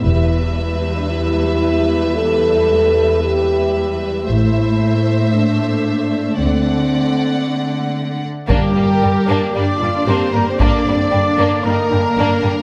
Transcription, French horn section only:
X:1
M:4/4
L:1/16
Q:1/4=114
K:Em
V:1 name="French horn section"
E4 E3 D E8 | A8 G8 | E8 D8 | C12- C2 z2 |
[K:Gm] G,8 D4 C2 B, C | D8 B,8 |]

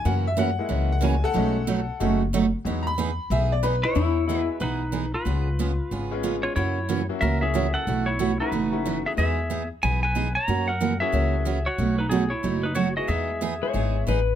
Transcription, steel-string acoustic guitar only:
X:1
M:4/4
L:1/8
Q:"Swing" 1/4=184
K:E
V:1 name="Steel-string acoustic guitar"
[C,E,^A,CF] z [C,E,A,CF] z [C,E,A,CF] z [C,E,A,CF] z | [B,,F,A,DF] z [B,,F,A,DF] z [B,,F,A,DF] z [B,,F,A,DF] z | [E,B,DG] z [E,B,DG] z [E,B,DG] z [E,B,DG] z | [E,B,DG] z [E,B,DG] z [E,B,DG] z [E,B,DG] z |
[C,G,B,^EG] z [C,G,B,EG] z [C,G,B,EG] z [C,G,B,EG] z | [C,E,^A,CF] z [C,E,A,CF] z [C,E,A,CF] z [C,E,A,CF] z | [B,,E,A,EF] z [B,,E,A,EF] z [B,,E,A,EF] z [B,,E,A,EF] z | [E,B,DG] z [E,B,DG] z [E,B,DG] z [E,B,DG] z |
[C,E,^A,CF] z [C,E,A,CF] z [C,E,A,CF] z [C,E,A,CF] z | [B,,F,A,DF] z [B,,F,A,DF] z [B,,F,A,DF] z [B,,F,A,DF] z | [E,B,DG] z [E,B,DG] z [E,B,DG] z [E,B,DG] z |]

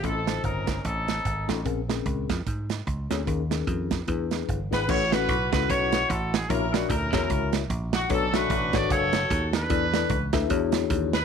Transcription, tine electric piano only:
X:1
M:4/4
L:1/16
Q:"Swing" 1/4=149
K:Bbdor
V:1 name="Tine electric piano"
[DEF=A]2 [D,EFc]4- [D,EFc] z6 z [DEFA]2 | [CDAB]2 [CDAB]4- [CDAB] z6 z [CDAd]2 | [DEAB]2 [DEAB]4- [DEAB] z [=D=E^G=B]4 z2 [DEGB]2 | [K:A] [CEFAB]2 [CEFAB]2 z2 [CEFAB]4- [CEFAB] z4 z |
[DEF^Ac]2 [DEFAd]2 z2 [D,EFGAc]4- [D,EFGAc] z4 z | [DFABc]2 [DFABe]2 z2 [DFABc]4- [DFABc] z4 z | [DEABd]2 [DEABd]2 z2 [DEABe]2 [DEFGc]6 z2 |]
V:2 name="Tine electric piano" clef=bass
=A,,6 z8 z2 | B,,6 z8 z2 | E,6 z2 =E,6 z2 | [K:A] A,,6 z8 z2 |
^A,,6 z8 z2 | B,,6 z8 z2 | E,6 z2 E,6 z2 |]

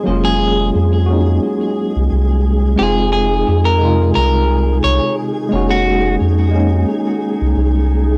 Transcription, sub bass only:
X:1
M:4/4
L:1/16
Q:"Swing 16ths" 1/4=88
K:Fphr
V:1 name="Sub bass" clef=bass
F,,,4 F,,4 z3 C,, C,,4 | F,,,4 F,,4 C,,4 C,, z3 | F,,,4 F,,4 z3 C,, C,,4 |]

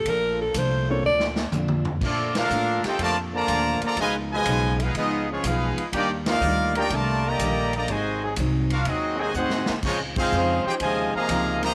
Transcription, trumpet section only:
X:1
M:4/4
L:1/16
Q:"Swing" 1/4=123
K:Bb
V:1 name="Trumpet section"
z16 | [B,FAd]2 [DABf]4 [EAcg]2 [FBda]2 [Fdab]4 [FAdb]2 | [F_ce_a]2 [Fcea]4 [E_Acf]2 [_CFAe]2 [CFA_d]2 [EAcf]3 z | [B,EGd]2 [EBdf]4 [EBdg]2 [FBda]2 [Gdeb]4 [Gdeb]2 |
[_Gce_a]2 z4 [DGBf]2 [CG_Ae]2 [Gcea]2 [EAc_g]3 z | [_A,EF_d]2 [E_Acf]4 [EAcg]2 [Fce_a]2 [Aefb]4 [Gceb]2 |]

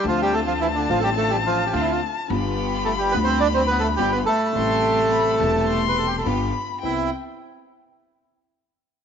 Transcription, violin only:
X:1
M:4/4
L:1/8
Q:1/4=106
K:C
V:1 name="Violin"
a8 | b8 | c'2 b a c'2 b2 | g z6 z |]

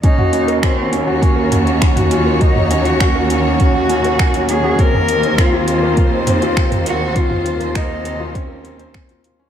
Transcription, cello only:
X:1
M:4/4
L:1/16
Q:1/4=101
K:Ebdor
V:1 name="Cello"
E4 C2 B,6 z2 F2 | E3 G3 G8 A2 | B4 F2 F4 z4 G2 | F4 E4 D6 z2 |]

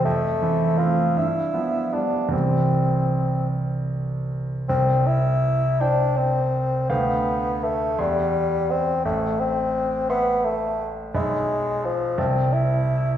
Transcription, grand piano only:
X:1
M:6/8
L:1/8
Q:3/8=55
K:C
V:1 name="Grand piano"
F,, [E,C] [A,C] G,, [F,B,] [G,B,] | [C,,E,G,C]6 | C,,3 [cg]3 | [D,,fg]3 [E,,ec']3 |
A,,,3 [ec']3 | [B,,,eb]3 [C,,ea]3 |]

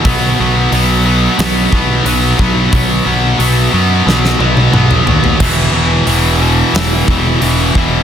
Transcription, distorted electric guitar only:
X:1
M:4/4
L:1/8
Q:1/4=90
K:Bphr
V:1 name="Distorted electric guitar" clef=bass
[B,,F,B,] [B,,F,B,] [B,,F,B,] [B,,F,B,] [B,,F,B,] [B,,F,B,] [B,,F,B,] [B,,F,B,] | [B,,F,B,] [B,,F,B,] [B,,F,B,] [B,,F,B,] [B,,F,B,] [B,,F,B,] [B,,F,B,] [B,,F,B,] | [E,,B,,E,] [E,,B,,E,] [E,,B,,E,] [E,,B,,E,] [E,,B,,E,] [E,,B,,E,] [E,,B,,E,] [E,,B,,E,] |]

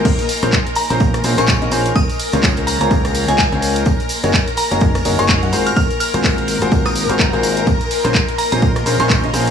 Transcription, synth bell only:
X:1
M:4/4
L:1/16
Q:"Swing 16ths" 1/4=126
K:Bbm
V:1 name="Synth bell"
z6 b b z3 d' z4 | e' z4 z b b z3 a a z3 | z6 b b z3 d' z3 f' | f' z f'4 z3 e'3 z4 |
z6 b b z3 d' z4 |]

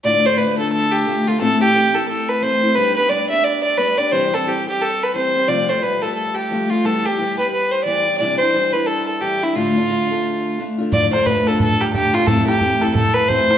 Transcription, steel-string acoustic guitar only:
X:1
M:4/4
L:1/8
Q:"Swing" 1/4=177
K:Ddor
V:1 name="Steel-string acoustic guitar"
[D,,A,,D,A,DF] [D,A,DF] [D,A,DF] [D,A,DF]3 [D,A,DF] [D,A,DF] | [A,,E,A,CE] [A,CE] [E,A,CE] [A,CE]3 [E,A,CE] [A,CE] | [G,B,DG] [B,DG] [G,B,DG] [B,DG]3 [G,B,DG] [B,DG] | [C,E,G,CG] [G,CG] [E,G,CG] [G,CG]3 [E,G,CG] [G,CG] |
[F,,C,F,G,A,F] [F,G,A,F] [F,G,A,F] [F,G,A,F]3 [F,G,A,F] [F,G,A,F] | [E,G,B,G] [G,B,G] [E,G,B,G] [G,B,G]3 [E,G,B,G] [G,B,G] | [C,E,G,DE] [G,DE] [E,G,DE] [G,DE]3 [E,G,DE] [G,DE] | [D,,A,,D,A,DF] [D,A,DF] [D,A,DF] [D,A,DF]3 [D,A,DF] [D,A,DF] |
[D,,A,,D,A,DF] [D,A,DF] [D,A,DF] [D,A,DF]3 [D,A,DF] [D,A,DF] | [A,,E,A,CE] [A,CE] [E,A,CE] [A,CE]3 [E,A,CE] [A,CE] |]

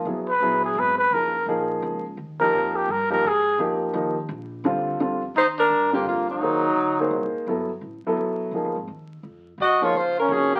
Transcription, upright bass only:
X:1
M:3/4
L:1/8
Q:"Swing" 1/4=170
K:Eb
V:1 name="Upright bass" clef=bass
=B,,,2 _B,,,2 ^G,,,2 | _G,,,2 B,,,2 _D,,2 | E,,2 F,,2 G,,2 | A,,2 F,,2 E,,2 |
B,,,2 D,,2 F,,2 | E,,2 G,,2 F,,2 | E,,2 D,,2 C,, z | G,,,2 =A,,, z =B,,,2 |
(3_D,, _C,, A,,, E,,2 F,,2 | _G,, z _D,2 C,2 |]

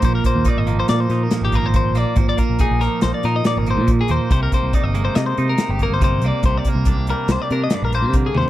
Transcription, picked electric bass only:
X:1
M:5/4
L:1/16
Q:1/4=141
K:Bbmix
V:1 name="Picked electric bass" clef=bass
B,,,2 z E,, z A,,,3 B,,2 B,,2 z A,,,2 A,,,3 B,,, z | A,,,2 z B,,,2 B,,,2 z B,,, z B,,2 z A,,,2 B,,3 E,, z | C,,2 z C,, z G,,,3 C,2 C,2 z G,,,2 G,,,3 C,, z | C,,2 z C,,2 C,,2 z C,, z C,2 z B,,,2 C,3 E,, z |]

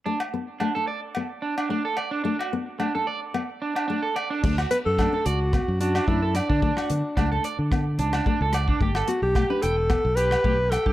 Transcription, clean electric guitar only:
X:1
M:4/4
L:1/16
Q:"Swing 16ths" 1/4=110
K:D
V:1 name="Clean electric guitar"
D z3 D A d z3 D D D A d D | D F z2 D A d z3 D D D A d D | D F z2 D A d z3 D D D A d D | D F z2 D A d z3 D D D A d D |
G A z2 G B g z3 G G G z g G |]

